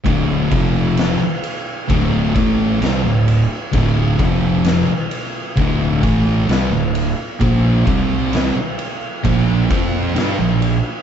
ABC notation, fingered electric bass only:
X:1
M:4/4
L:1/16
Q:1/4=65
K:Dm
V:1 name="Fingered electric bass" clef=bass
D,,,2 F,,,3 z3 D,,,2 A,,,2 C,, D,,,2 z | D,,,2 F,,,3 z3 D,,,2 A,,,2 C,, D,,,2 z | B,,,2 C,,3 z3 B,,,2 F,,2 G,, B,,,2 z |]